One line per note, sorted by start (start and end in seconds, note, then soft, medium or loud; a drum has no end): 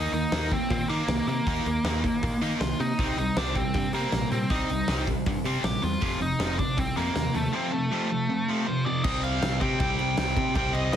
0.00 0.12 D#3 medium
0.00 0.13 A#3 loud
0.00 0.11 D#4 loud
0.00 0.13 D#4 medium
0.12 0.25 D#2 medium
0.12 0.31 D#3 medium
0.12 0.31 A#3 medium
0.12 0.53 D#4 loud
0.12 open hi-hat medium
0.32 0.56 D#2 medium
0.32 0.51 D#3 medium
0.32 0.51 A#3 loud
0.32 0.51 D#4 medium
0.32 snare loud
0.32 open hi-hat medium
0.51 0.69 D#3 medium
0.51 0.69 A#3 medium
0.51 0.70 C4 medium
0.51 kick medium
0.51 open hi-hat medium
0.70 0.83 A#2 loud
0.70 0.88 D#3 medium
0.70 0.88 A#3 medium
0.70 0.89 C4 medium
0.70 kick loud
0.70 open hi-hat medium
0.89 1.08 D#3 medium
0.89 1.02 D#3 medium
0.89 1.27 A#3 loud
0.89 1.08 A#3 medium
0.89 1.08 D#4 loud
0.89 open hi-hat medium
1.07 1.20 C2 medium
1.07 1.26 D#3 medium
1.07 1.26 A#3 medium
1.07 snare loud
1.07 open hi-hat medium
1.27 1.39 C3 medium
1.27 1.45 D#3 medium
1.27 2.65 A#3 loud
1.27 1.46 A#3 medium
1.27 open hi-hat medium
1.46 1.59 D#2 medium
1.46 1.65 D#3 medium
1.46 1.65 A#3 loud
1.46 1.65 D#4 medium
1.46 kick loud
1.46 open hi-hat medium
1.66 1.78 D#2 medium
1.66 1.83 D#3 medium
1.66 1.83 A#3 medium
1.66 open hi-hat medium
1.83 2.08 D#2 medium
1.83 2.03 D#3 medium
1.83 2.03 A#3 loud
1.83 2.03 D#4 medium
1.83 snare loud
1.83 open hi-hat medium
2.04 2.21 D#3 medium
2.04 2.21 A#3 medium
2.04 kick medium
2.04 open hi-hat medium
2.23 2.35 A#2 medium
2.23 2.40 D#3 medium
2.23 2.41 A#3 medium
2.23 kick loud
2.23 open hi-hat medium
2.41 2.54 D#3 medium
2.41 2.60 D#3 medium
2.41 2.60 A#3 medium
2.41 2.60 D#4 loud
2.41 open hi-hat medium
2.60 2.72 C2 medium
2.60 2.78 D#3 medium
2.60 2.78 A#3 medium
2.60 2.80 F4 medium
2.60 snare loud
2.60 open hi-hat medium
2.80 2.92 C3 medium
2.80 2.97 D#3 medium
2.80 2.97 A#3 medium
2.80 3.17 D#4 loud
2.80 open hi-hat medium
2.99 3.11 C2 medium
2.99 3.17 C3 medium
2.99 3.17 G3 medium
2.99 3.17 C4 loud
2.99 kick loud
2.99 open hi-hat medium
3.16 3.29 C2 medium
3.16 3.35 C3 medium
3.16 3.35 G3 medium
3.16 3.36 D#4 loud
3.16 open hi-hat medium
3.36 3.60 C2 medium
3.36 3.54 C3 medium
3.36 3.55 G3 medium
3.36 3.55 C4 loud
3.36 3.55 D4 medium
3.36 snare loud
3.36 open hi-hat medium
3.55 3.73 C3 medium
3.55 3.73 G3 medium
3.55 3.94 C4 medium
3.55 kick loud
3.55 open hi-hat medium
3.74 3.87 G2 loud
3.74 3.92 C3 medium
3.74 3.92 G3 medium
3.74 kick loud
3.74 open hi-hat medium
3.93 4.05 C3 medium
3.93 4.12 C3 medium
3.93 4.12 G3 medium
3.93 4.31 A#3 medium
3.93 4.12 C4 loud
3.93 open hi-hat medium
4.12 4.25 A#1 medium
4.12 4.30 C3 medium
4.12 4.30 G3 medium
4.12 snare loud
4.12 open hi-hat medium
4.31 4.43 A#2 loud
4.31 4.49 C3 medium
4.31 4.49 G3 medium
4.31 4.49 C4 medium
4.31 open hi-hat medium
4.50 4.62 C2 medium
4.50 4.68 C3 medium
4.50 4.69 G3 loud
4.50 4.69 C4 medium
4.50 5.03 D#4 medium
4.50 kick loud
4.50 open hi-hat medium
4.69 4.81 C2 medium
4.69 4.87 C3 medium
4.69 4.87 G3 medium
4.69 open hi-hat medium
4.88 5.12 C2 medium
4.88 5.06 C3 medium
4.88 5.06 G3 medium
4.88 5.07 C4 medium
4.88 snare loud
4.88 open hi-hat medium
5.07 5.25 C3 medium
5.07 5.25 G3 medium
5.07 kick medium
5.07 open hi-hat medium
5.26 5.38 G2 medium
5.26 5.43 C3 medium
5.26 5.44 G3 medium
5.26 kick loud
5.26 open hi-hat medium
5.44 5.57 C3 medium
5.44 5.63 C3 medium
5.44 5.63 G3 loud
5.44 5.64 C4 loud
5.44 open hi-hat medium
5.63 5.76 A#1 medium
5.63 5.81 C3 medium
5.63 5.81 G3 medium
5.63 5.84 G4 loud
5.63 snare loud
5.63 open hi-hat medium
5.82 5.95 E2 medium
5.82 6.00 C3 medium
5.82 6.00 G3 medium
5.82 6.21 F4 loud
5.82 open hi-hat medium
6.01 6.14 F1 medium
6.01 6.19 F2 medium
6.01 6.19 C3 medium
6.01 6.20 F3 medium
6.01 kick loud
6.01 open hi-hat medium
6.20 6.33 F1 medium
6.20 6.38 F2 medium
6.20 6.38 C3 medium
6.20 6.59 D#4 loud
6.20 open hi-hat medium
6.39 6.63 F1 medium
6.39 6.57 F2 medium
6.39 6.57 C3 medium
6.39 6.58 F3 loud
6.39 snare loud
6.39 open hi-hat medium
6.58 6.75 F2 medium
6.58 6.76 C3 medium
6.58 6.78 D4 medium
6.58 kick medium
6.58 open hi-hat medium
6.77 6.89 C2 loud
6.77 6.94 F2 medium
6.77 6.94 C3 medium
6.77 6.96 C4 loud
6.77 kick loud
6.77 open hi-hat medium
6.96 7.14 F2 loud
6.96 7.09 F2 medium
6.96 7.14 C3 medium
6.96 7.15 F3 loud
6.96 7.35 A#3 medium
6.96 open hi-hat medium
7.15 7.28 D#2 medium
7.15 7.32 F2 medium
7.15 7.32 C3 medium
7.15 snare medium
7.15 open hi-hat medium
7.34 7.47 D#2 medium
7.34 7.51 F2 medium
7.34 7.51 C3 medium
7.34 7.55 A3 medium
7.34 open hi-hat medium
7.52 7.70 F2 medium
7.52 7.71 C3 loud
7.52 7.71 F3 medium
7.52 7.73 C4 medium
7.72 7.89 F2 medium
7.72 7.89 C3 medium
7.72 8.70 A3 medium
7.91 8.09 F2 medium
7.91 8.09 C3 medium
7.91 8.09 F3 loud
8.10 8.27 F2 medium
8.10 8.27 C3 medium
8.29 8.46 F2 medium
8.29 8.46 C3 medium
8.48 8.66 F2 medium
8.48 8.66 C3 medium
8.48 8.66 F3 loud
8.67 8.84 F2 medium
8.67 8.84 C3 medium
8.67 8.85 F4 medium
8.67 8.85 C5 medium
8.85 9.03 F2 medium
8.85 9.03 C3 medium
8.85 9.21 D#4 medium
8.85 9.04 D5 medium
9.04 9.39 C2 medium
9.04 9.63 C3 medium
9.04 9.61 G3 medium
9.04 9.60 C4 medium
9.04 9.24 D#5 loud
9.04 kick loud
9.04 crash loud
9.04 crash medium
9.23 9.61 F5 loud
9.23 crash medium
9.41 9.59 C2 medium
9.41 snare loud
9.41 crash medium
9.60 9.78 C3 loud
9.60 10.53 C3 medium
9.60 10.55 G3 medium
9.60 10.57 C4 loud
9.60 9.79 G5 loud
9.60 kick medium
9.60 crash medium
9.80 9.97 C2 loud
9.80 10.17 G5 loud
9.80 kick loud
9.80 crash medium
9.99 10.16 C2 medium
9.99 crash medium
10.18 10.35 C2 medium
10.18 10.53 G5 loud
10.18 snare loud
10.18 crash medium
10.37 10.54 C3 medium
10.37 kick medium
10.37 crash medium
10.54 10.72 C2 loud
10.54 10.96 C3 medium
10.54 10.96 G3 medium
10.54 10.96 C4 medium
10.54 10.75 G5 loud
10.54 kick loud
10.54 crash medium
10.73 10.91 C2 medium
10.73 10.92 D#5 loud
10.73 crash medium
10.93 10.96 C2 medium
10.93 10.96 D#5 medium
10.93 snare loud
10.93 crash medium